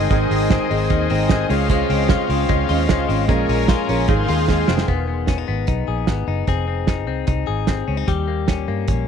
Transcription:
Already playing: steel-string acoustic guitar G#3 C4 D#4 C5, clean electric guitar G#3 C4, transistor combo organ D#4 G#4 C5, analog synth pad D#5 G#5 D#6
0.10 fingered electric bass G#1, steel-string acoustic guitar G#2 D#3 G#3 C4 D#4 C5, clean electric guitar D#3, kick, closed hi-hat
0.31 fingered electric bass G#1, clean electric guitar G#3, open hi-hat
0.50 clean electric guitar C4, kick, snare, closed hi-hat
0.70 fingered electric bass G#1, steel-string acoustic guitar G#3 C4 D#4 C5, clean electric guitar G#3, open hi-hat
0.90 fingered electric bass D#2, clean electric guitar D#3, kick, closed hi-hat
1.09 fingered electric bass G#1, steel-string acoustic guitar G#3 C4 D#4 C5, clean electric guitar C4, transistor combo organ A#5, open hi-hat
1.29 clean electric guitar D#3, steel-string acoustic guitar G#3 C4 D#4 C5, transistor combo organ G#5, kick, snare, closed hi-hat
1.49 fingered electric bass C#2, steel-string acoustic guitar G#3 C#4 F4 C5, clean electric guitar G#3, transistor combo organ C#4 F4 C5 F5, analog synth pad F5, open hi-hat
1.69 steel-string acoustic guitar C#3 G#3 C#4 F4 C5, clean electric guitar G#3, kick, closed hi-hat
1.90 fingered electric bass C#2, clean electric guitar C4, open hi-hat
2.09 clean electric guitar F4, kick, snare, closed hi-hat
2.28 fingered electric bass C#2, steel-string acoustic guitar G#3 C#4 F4 C5, clean electric guitar C4, open hi-hat
2.49 fingered electric bass C#2, clean electric guitar G#3, kick, closed hi-hat
2.68 fingered electric bass D#2, steel-string acoustic guitar G#3 C#4 F4 C5, clean electric guitar F4, open hi-hat
2.88 fingered electric bass C#2, steel-string acoustic guitar G#3 C#4 F4 C5, clean electric guitar G#3, kick, snare, closed hi-hat
3.07 fingered electric bass G#1, steel-string acoustic guitar G#3 C#4 F4 C5, clean electric guitar C4, open hi-hat
3.27 fingered electric bass A#1, steel-string acoustic guitar A#2 F3 G#3 C#4 F4 A#4, clean electric guitar G#3, transistor combo organ C#4 G#4 A#4, analog synth pad A#4 G#5, kick, closed hi-hat
3.49 fingered electric bass A#1, clean electric guitar C#4, open hi-hat
3.68 clean electric guitar F4, kick, snare, closed hi-hat
3.87 fingered electric bass A#1, steel-string acoustic guitar G#3 C#4 F4 A#4, clean electric guitar C#4, open hi-hat
4.07 fingered electric bass G#1, steel-string acoustic guitar G#2 F3 G#3 C4 D#4 G#4, clean electric guitar D#3, transistor combo organ F4 G#4 C5, analog synth pad G#4 F5 C6, kick, closed hi-hat
4.26 fingered electric bass D#2, steel-string acoustic guitar G#3 C4 D#4 G#4, clean electric guitar F4, open hi-hat
4.47 steel-string acoustic guitar G#3 C4 D#4 G#4, clean electric guitar G#3, kick, snare
4.67 fingered electric bass F1, steel-string acoustic guitar G#3 C4 D#4 G#4, clean electric guitar C4, snare
4.78 snare
4.88 fingered electric bass E1, clean electric guitar B3 G#4, kick, closed hi-hat
5.08 clean electric guitar B3
5.27 clean electric guitar C#4, kick, snare, closed hi-hat
5.38 clean electric guitar D#4
5.48 fingered electric bass G#1, clean electric guitar B3
5.67 fingered electric bass B1, clean electric guitar D#4, kick, closed hi-hat
5.88 fingered electric bass A#1, clean electric guitar G#4
6.07 fingered electric bass G#1, clean electric guitar B3, kick, snare, closed hi-hat
6.27 fingered electric bass F#1, clean electric guitar D#4
6.47 fingered electric bass F1, clean electric guitar C4 G#4, kick, closed hi-hat
6.68 clean electric guitar C4
6.87 clean electric guitar D#4, kick, snare, closed hi-hat
7.07 fingered electric bass C2, clean electric guitar C4
7.27 fingered electric bass C2, clean electric guitar D#4, kick, closed hi-hat
7.47 fingered electric bass G#1, clean electric guitar G#4
7.67 clean electric guitar C4, kick, snare, closed hi-hat
7.88 fingered electric bass C#2, clean electric guitar C#4
7.97 clean electric guitar D#4
8.08 fingered electric bass D#2, clean electric guitar G3 G4, kick, closed hi-hat
8.28 clean electric guitar A#3
8.48 clean electric guitar C#4, kick, snare, closed hi-hat
8.68 fingered electric bass G2, clean electric guitar A#3
8.88 fingered electric bass A#1, clean electric guitar C#4, kick, closed hi-hat

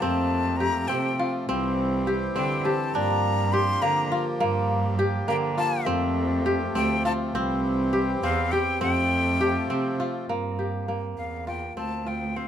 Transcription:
Already playing: harmonium F3 G4, kora A#3 F4 G4
0.00 cello F2, harmonium A3, kora C4, flute A5
0.57 kora G4, flute A#5
0.88 cello C3, kora C4, flute G5
1.19 kora F4
1.47 cello C2, harmonium E3 C4 G4, kora C4
2.07 kora G4
2.36 cello D3, kora C4, flute G5
2.65 kora G4, flute A5
2.93 cello G2, harmonium F3 A#3 G4, kora D4, flute A#5
3.53 kora G4, flute C6
3.81 cello D3, kora A#3, flute A#5
4.12 kora F4
4.40 cello G2, kora A#3
4.99 kora G4
5.28 cello D3, kora A#3, flute G5
5.58 kora F4, flute A5
5.86 cello F2, harmonium F3 A3, kora C4
6.46 kora G4
6.75 cello D2, kora C4, flute G5
7.05 kora F4, flute A5
7.34 cello C2, harmonium E3 C4, kora C4
7.93 kora G4
8.23 cello E2, kora C4, flute F5
8.52 kora G4, flute G5
8.80 cello F2, harmonium F3 A3, kora C4, flute G5
9.40 kora G4
9.70 cello C3, kora C4
10.00 kora F4
10.29 cello G2, kora A#3
10.59 kora G4
10.88 kora A#3
11.18 cello E2, flute F5
11.47 kora F4, flute G5
11.77 cello D2, kora C4, flute A5
12.06 kora F4, flute G5
12.36 kora C4, flute F5

